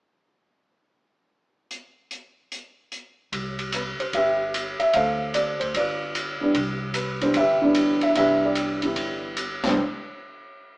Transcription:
1.71 closed hi-hat
2.11 closed hi-hat
2.52 closed hi-hat
2.92 closed hi-hat
3.32 C2, kick, ride
3.59 ride
3.72 B4, hi-hat pedal, ride
3.99 C5, muted upright bass stroke, ride
4.13 G1 G4 B4 E5, kick, ride
4.54 hi-hat pedal, ride
4.79 E5, muted upright bass stroke, ride
4.93 D2 A4 C5 F5, kick, ride
5.34 D5, hi-hat pedal, ride
5.60 D2 C5, ride
5.74 G1 F4 B4 D5, kick, ride
6.15 hi-hat pedal, ride
6.41 E3 G3 B3 D4, muted upright bass stroke
6.54 C2, kick, ride
6.94 B4, hi-hat pedal, ride
7.21 E3 G3 B3 D4 C5, ride
7.34 G1 E5, kick, ride
7.38 G4 B4
7.62 E3 G3 B3 D4
7.75 hi-hat pedal, ride
8.01 E5, muted upright bass stroke, ride
8.15 C2 E3 G3 B3 D4 G4 B4 E5, kick, ride
8.44 G4 B4 D5
8.55 hi-hat pedal, ride
8.82 E3 G3 B3 E4, ride
8.96 G1, kick, ride
9.37 hi-hat pedal, ride
9.64 C2 E3 G3 B3 D4 C5, kick, snare, crash

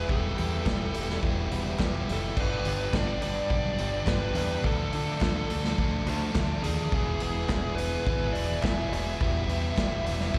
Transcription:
Already playing: B3 B4 E6
0.09 E1 E3 G3 B3 E4 G4 A4 G5, kick
0.37 E2 E3 G3 B3 E4 G4, open hi-hat
0.65 E1 E3 G3 B3 E4 G4, kick, snare, clap
0.94 E1 E3 G3 B3 E4 G4, open hi-hat
1.10 snare
1.23 E1 E3 G3 B3 E4 G4, kick
1.51 E1 E3 G3 B3 E4 G4, open hi-hat
1.79 E1 E3 G3 B3 E4 G4, kick, snare, clap
2.09 F1 E3 G3 B3 E4 G4, snare, open hi-hat
2.13 A4
2.37 G1 G2 D3 G3 B3 D4 G4 B4 D6, kick, crash
2.64 G1 G2 D3 G3 B3 D4 G4, open hi-hat
2.93 G1 G2 D3 G3 B3 D4 G4 D5, kick, snare, clap
3.22 G2 D3 G3 B3 D4 G4 D5, open hi-hat
3.50 B1 G2 D3 G3 B3 D4 G4, kick
3.78 G1 G2 D3 G3 B3 D4 G4, open hi-hat
4.06 G1 G2 D3 G3 B3 D4 G4 B4, kick, snare, clap
4.35 E2 G2 D3 G3 B3 D4 G4, snare, open hi-hat
4.64 D2 D3 F3 A3 D4 A4 F5, kick
4.92 D3 F3 A3 D4 A4, open hi-hat
5.21 D2 D3 F3 A3 D4 A4, kick, snare, clap
5.50 D2 D3 F3 A3 D4 A4, open hi-hat
5.64 snare
5.78 D2 D3 F3 A3 D4 A4, kick
6.06 D2 D3 F3 A3 D4 A4, open hi-hat
6.35 D2 D3 F3 A3 D4, kick, snare, clap
6.39 A4
6.63 D#2 D3 F3 A3 D4 G#4, snare, open hi-hat
6.67 A4
6.92 E1 E3 G#3 B3 E4 G#4 B4 G#5, kick
6.96 E6
7.20 E1 E3 G#3 B3 E4 G#4, open hi-hat
7.49 E1 E3 G#3 B3 E4 G#4, kick, snare, clap
7.75 G#3 B4, open hi-hat
7.79 E3 B3 E4 G#4
8.06 G#1 E3 G#3 B3 E4 G#4, kick
8.33 E1 E3 G#3 B3 D5, open hi-hat
8.37 E4 G#4
8.61 E1 E3 G#3 E5, kick, snare, clap
8.66 B3 E4 G#4
8.89 E1 E3 G#3 E5, open hi-hat
8.94 B3 E4 G#4, snare
9.20 E1 E3 G3 B3 E4 G4 G5, kick
9.47 E2 E3 G3 B3 E4 G4, open hi-hat
9.77 E1 E3 G3 B3 E4 G4, kick, snare, clap
10.04 E1 E3 G3 B3 E4, open hi-hat
10.09 G4
10.20 snare
10.34 E1 E3 G3 B3 E4, kick

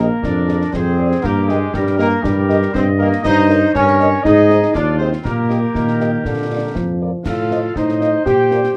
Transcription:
Already playing: A#3 A#4
0.22 F2 D4 D5, concert bass drum, snare
0.48 G#4 D5, snare
0.61 snare
0.73 F2 C4 G#4 C5, concert bass drum, snare
0.99 G#4 D5
1.12 snare
1.23 G2 A#3 G4 A#4, concert bass drum, snare
1.48 G#3 G4 G#4 A#4 D#5, snare
1.73 G2 G3 G4 A#4, concert bass drum, snare
1.87 snare
1.98 A#3 G4 A#4 D#5, snare
2.23 G2 G3 G4, concert bass drum, snare
2.49 G4 A#4 D#5, snare
2.62 snare
2.73 G2 C4 C5 D#5, concert bass drum, snare
2.98 A#3 G4 A#4 D#5
3.12 snare
3.24 G2 D#4 C5 D#5, concert bass drum, snare, crash
3.50 A#4 C#5 D#5, snare
3.74 G2 C#4 A#4 C#5, concert bass drum, snare
3.87 snare
4.00 A#4 C#5 D#5, snare
4.24 G#2 D#4 G#4 D#5, concert bass drum, snare
4.50 G#4 C5 D#5, snare
4.63 snare
4.74 D#2 D4 F4 D5, concert bass drum, snare
4.99 C4 G#4 C5 D#5
5.13 snare
5.24 A#2 A#3 G4 A#4, concert bass drum, snare
5.50 G4 A#4 D#5, snare
5.74 A#2 D#3, concert bass drum, snare
5.88 snare
6.00 G4 A#4 D#5, snare
6.24 A#2 D3, concert bass drum, snare
6.50 F4 A#4 D5
6.74 F2 F3, concert bass drum, snare
7.01 F4 A#4 D5
7.25 A2 F4 A4 F5, concert bass drum, snare, crash
7.51 F4 C5 D#5, snare
7.75 A2 D#4 C5 D#5, concert bass drum, snare
7.89 snare
8.01 F4 C5 D#5, snare
8.25 A#2 G4 G5, concert bass drum, snare
8.51 F4 A#4 D5, snare
8.64 snare

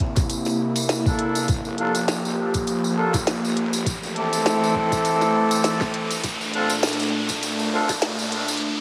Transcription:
Already playing: C3 A#3 E4, riser
0.00 kick, closed hi-hat
0.16 kick, snare, closed hi-hat, tambourine
0.29 closed hi-hat, tambourine
0.45 snare, tambourine
0.76 closed hi-hat, tambourine
0.89 snare, closed hi-hat, tambourine
1.06 A#3 D4 E4 A4, kick, tambourine
1.19 closed hi-hat
1.35 E2, closed hi-hat, tambourine
1.48 G1 F3 G4, kick, closed hi-hat, tambourine
1.65 tambourine
1.78 A#3 D4 F4 A4, closed hi-hat
1.95 closed hi-hat, tambourine
2.08 A#1, snare, closed hi-hat, tambourine
2.25 tambourine
2.54 kick, closed hi-hat, tambourine
2.67 A#1, closed hi-hat, tambourine
2.84 tambourine
2.97 A#3 D4 F4 A4
3.14 G1, kick, snare, closed hi-hat, tambourine
3.27 snare, closed hi-hat, tambourine
3.44 tambourine
3.57 closed hi-hat
3.73 closed hi-hat, tambourine
3.86 E3 A3, kick, closed hi-hat, tambourine
4.03 F2, tambourine
4.16 C2 C4 E4 G4 A4, closed hi-hat
4.33 C2, closed hi-hat, tambourine
4.46 snare, closed hi-hat, tambourine
4.64 tambourine
4.75 kick
4.92 kick, closed hi-hat, tambourine
5.05 closed hi-hat, tambourine
5.21 A1, snare, tambourine
5.51 closed hi-hat, tambourine
5.64 snare, closed hi-hat, tambourine
5.81 kick, snare, tambourine
5.94 closed hi-hat
6.11 closed hi-hat, tambourine
6.24 A#1 A#2 A3 D4, kick, closed hi-hat, tambourine
6.41 tambourine
6.53 C4 D4 F4 A4, closed hi-hat
6.69 closed hi-hat, tambourine
6.83 D2, snare, closed hi-hat, tambourine
6.89 closed hi-hat
6.93 closed hi-hat
6.99 closed hi-hat, tambourine
7.03 closed hi-hat
7.09 closed hi-hat
7.29 kick, closed hi-hat, tambourine
7.43 D2, closed hi-hat, tambourine
7.59 tambourine
7.73 C4 D4 F4 A4
7.89 A#1, kick, snare, closed hi-hat, tambourine
8.02 snare, closed hi-hat, tambourine
8.19 tambourine
8.32 closed hi-hat
8.48 closed hi-hat, tambourine
8.57 closed hi-hat
8.62 C3 A#3 E4

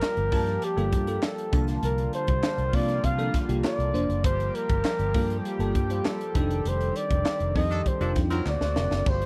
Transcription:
Already playing: F3 G3 A#3 G4 A#4
0.02 snare, clap
0.17 G1, closed hi-hat
0.31 G2 G3 A#3 F4 A5, kick, open hi-hat
0.47 snare, closed hi-hat
0.62 G4, closed hi-hat
0.77 G1 G3 A#3 F4 A4, closed hi-hat
0.92 G2, kick, closed hi-hat
1.07 G3 A#3 F4 A4, closed hi-hat
1.23 A4, snare, clap
1.38 closed hi-hat
1.52 C2 D3 F3 G3 A#3 D4 F4 A5, kick, closed hi-hat
1.68 snare, closed hi-hat
1.83 C2 A#4, closed hi-hat
1.98 closed hi-hat
2.13 C5, closed hi-hat
2.27 C2, kick, closed hi-hat
2.43 snare, clap
2.58 C2, closed hi-hat
2.73 C3 F3 A#3 D4 F4 D5, kick, open hi-hat
2.88 snare, closed hi-hat
3.04 C3 F5, kick, closed hi-hat
3.18 F3 A#3 D4 A4, closed hi-hat
3.34 kick, snare, closed hi-hat
3.48 C2 F3 A#3 D4 G4, closed hi-hat
3.64 D5, snare, clap
3.79 C2, closed hi-hat
3.93 F1 F3 A#3 D4 C5, closed hi-hat
4.09 F#1, closed hi-hat
4.24 G1 F3 G3 G4 C5, kick, closed hi-hat
4.40 closed hi-hat
4.55 A#4, closed hi-hat
4.69 G1, kick, closed hi-hat
4.84 snare, clap
4.99 G1, closed hi-hat
5.14 G2 G3 A#3 F4 A4, kick, open hi-hat
5.30 closed hi-hat
5.39 A4
5.45 G4, closed hi-hat
5.59 G1 G3 A#3 F4 A4, closed hi-hat
5.75 G2, kick, closed hi-hat
5.89 G3 A#3 F4 C5, closed hi-hat
6.05 A4, snare, clap
6.21 closed hi-hat
6.35 F1 D#3 G3 C4 D4 D#4 A4, kick, closed hi-hat
6.51 closed hi-hat
6.65 F1 C5, closed hi-hat
6.81 closed hi-hat
6.96 D5, closed hi-hat
7.10 F1, kick, closed hi-hat
7.25 snare, clap
7.40 F1, closed hi-hat
7.55 F2 G3 C4 D#4 A4 D#5, kick, open hi-hat
7.71 D#3 D4 A4, snare, closed hi-hat
7.86 C5, kick, closed hi-hat
8.01 F1 D#3 G3 D4 D#4 F4 A4, closed hi-hat
8.16 F2, kick, snare, closed hi-hat
8.30 F#3 G3 C4 D4 D#4 F4 A#4, closed hi-hat
8.45 D2 D3 A#3 C4 F#4 D5, snare, clap
8.61 D2, snare
8.76 F1 F#3 C4 D4 A#4, snare
8.91 F#1, snare
9.06 G1 F3 G3 G4 C5, kick, splash
9.22 closed hi-hat

